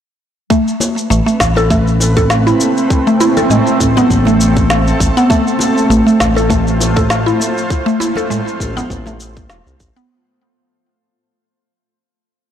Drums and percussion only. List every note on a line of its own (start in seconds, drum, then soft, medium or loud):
0.50 kick loud
0.50 shaker soft
0.68 shaker soft
0.80 high bongo medium
0.80 high conga medium
0.80 shaker medium
0.98 shaker soft
1.11 shaker soft
1.28 shaker soft
1.40 kick medium
1.40 snare medium
1.40 shaker medium
1.56 high bongo medium
1.56 shaker soft
1.70 kick loud
1.70 shaker soft
1.87 shaker soft
2.00 high bongo medium
2.00 shaker medium
2.17 kick loud
2.17 high bongo medium
2.17 shaker soft
2.30 snare medium
2.30 shaker soft
2.47 shaker soft
2.60 high conga soft
2.60 shaker medium
2.77 shaker soft
2.90 kick loud
2.90 shaker soft
3.07 shaker soft
3.20 high bongo medium
3.20 high conga medium
3.20 shaker medium
3.37 low conga medium
3.37 shaker soft
3.51 shaker soft
3.67 shaker soft
3.80 kick medium
3.80 shaker medium
3.97 high bongo medium
3.97 low conga medium
3.97 shaker soft
4.10 kick medium
4.10 high conga medium
4.10 shaker soft
4.25 high bongo medium
4.25 low conga medium
4.25 shaker soft
4.41 shaker medium
4.56 kick loud
4.56 high bongo soft
4.56 high conga soft
4.56 shaker soft
4.70 snare medium
4.70 shaker soft
4.87 shaker soft
5.00 kick loud
5.00 shaker medium
5.17 shaker soft
5.30 kick loud
5.30 shaker soft
5.47 shaker soft
5.59 high bongo medium
5.59 high conga medium
5.59 shaker medium
5.78 shaker soft
5.91 shaker soft
6.08 shaker soft
6.20 kick medium
6.20 snare medium
6.20 shaker medium
6.36 high bongo medium
6.36 shaker soft
6.50 kick loud
6.50 shaker soft
6.67 shaker soft
6.80 high bongo medium
6.80 shaker medium
6.97 kick loud
6.97 high bongo medium
6.97 shaker soft
7.10 snare medium
7.10 shaker soft
7.28 shaker soft
7.40 high conga soft
7.40 shaker medium
7.58 shaker soft
7.70 kick loud
7.70 shaker soft
7.88 shaker soft
8.00 high bongo medium
8.00 high conga medium
8.00 shaker medium
8.16 low conga medium
8.16 shaker soft
8.31 shaker soft
8.48 shaker soft
8.60 kick medium
8.60 shaker medium
8.77 high bongo medium
8.77 low conga medium
8.77 shaker soft
8.90 kick medium
8.90 high conga medium
8.90 shaker soft
9.06 high bongo medium
9.06 low conga medium
9.06 shaker soft
9.20 shaker medium
9.36 kick loud
9.36 high bongo soft
9.36 high conga soft
9.36 shaker soft
9.50 snare medium
9.50 shaker soft
9.67 shaker soft
9.80 kick loud
9.80 shaker medium
9.97 shaker soft